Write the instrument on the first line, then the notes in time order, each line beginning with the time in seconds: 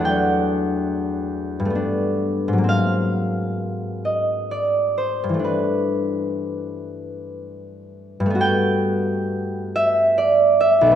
harp
Already playing: E2 F#3 G3 A3 B3 F#4 B4 F#5 A5 B5
0.00 D4
0.05 G5
1.60 G2
1.65 A3
1.70 B3
1.75 D4
2.48 G#2
2.53 F#3
2.58 A#3
2.64 C4
2.69 F5
4.05 D#5
4.51 D5
4.98 C5
5.24 G2
5.29 E3
5.34 A3
5.39 D4
5.44 B4
8.20 G2
8.26 A3
8.30 B3
8.35 F#4
8.41 G5
9.76 E5
10.18 D5
10.61 E5
10.81 B1
10.87 A3
10.91 B3